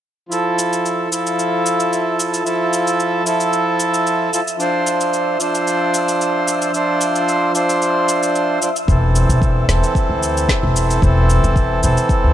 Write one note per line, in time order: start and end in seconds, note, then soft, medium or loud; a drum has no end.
0.29 1.07 F3 medium
0.29 1.08 E4 medium
0.29 12.33 E5 medium
0.29 cabasa soft
0.33 1.09 A4 medium
0.59 cabasa medium
0.73 cabasa soft
0.86 cabasa soft
1.09 2.41 F3 medium
1.09 2.42 E4 medium
1.09 cabasa medium
1.13 2.43 A4 medium
1.27 cabasa soft
1.39 cabasa soft
1.66 cabasa medium
1.80 cabasa soft
1.93 cabasa soft
2.20 cabasa medium
2.34 cabasa soft
2.43 3.21 F3 medium
2.43 3.23 E4 medium
2.43 cabasa soft
2.47 3.24 A4 medium
2.73 cabasa medium
2.87 cabasa soft
3.00 cabasa soft
3.24 4.29 F3 medium
3.24 4.30 E4 medium
3.24 cabasa medium
3.28 4.31 A4 medium
3.40 cabasa soft
3.53 cabasa soft
3.80 cabasa medium
3.94 cabasa soft
4.07 cabasa soft
4.32 4.39 F3 medium
4.32 4.40 E4 medium
4.32 4.40 A4 medium
4.32 cabasa medium
4.48 cabasa soft
4.57 5.36 F3 medium
4.57 5.37 D4 medium
4.57 5.38 C5 medium
4.57 cabasa soft
4.87 cabasa medium
5.01 cabasa soft
5.14 cabasa soft
5.38 6.70 F3 medium
5.38 6.71 D4 medium
5.38 cabasa medium
5.42 6.72 C5 medium
5.55 cabasa soft
5.67 cabasa soft
5.94 cabasa medium
6.08 cabasa soft
6.21 cabasa soft
6.48 cabasa medium
6.62 cabasa soft
6.72 7.50 F3 medium
6.72 7.51 D4 medium
6.72 7.52 C5 medium
6.72 cabasa soft
7.01 cabasa medium
7.16 cabasa soft
7.29 cabasa soft
7.52 8.57 F3 medium
7.52 8.58 D4 medium
7.52 8.59 C5 medium
7.52 cabasa medium
7.69 cabasa soft
7.82 cabasa soft
8.09 cabasa medium
8.23 cabasa soft
8.35 cabasa soft
8.61 8.68 F3 medium
8.61 8.68 D4 medium
8.61 8.69 C5 medium
8.61 cabasa medium
8.76 cabasa soft
8.87 9.25 E1 medium
8.87 9.65 E3 medium
8.87 9.66 C4 medium
8.87 9.67 A4 medium
8.87 kick medium
8.87 cabasa soft
9.16 cabasa medium
9.29 9.65 E1 medium
9.29 cabasa soft
9.42 kick loud
9.42 cabasa soft
9.67 9.80 E1 medium
9.67 10.98 E3 medium
9.67 10.99 C4 medium
9.67 11.00 A4 medium
9.67 snare medium
9.67 cabasa medium
9.84 cabasa soft
9.95 kick medium
9.95 cabasa soft
10.10 10.46 D2 medium
10.23 cabasa medium
10.37 cabasa soft
10.49 kick medium
10.49 snare medium
10.49 cabasa soft
10.63 10.99 E1 medium
10.76 cabasa medium
10.90 cabasa soft
11.01 11.39 E1 loud
11.01 11.79 E3 medium
11.01 11.80 C4 medium
11.01 kick medium
11.01 cabasa soft
11.05 11.81 A4 loud
11.30 cabasa medium
11.44 11.80 E1 medium
11.44 cabasa soft
11.56 kick loud
11.56 cabasa soft
11.81 11.95 E1 medium
11.81 12.33 E3 medium
11.81 12.33 C4 medium
11.81 12.33 A4 medium
11.81 cabasa medium
11.97 cabasa soft
12.09 kick medium
12.09 cabasa soft
12.24 12.33 D2 medium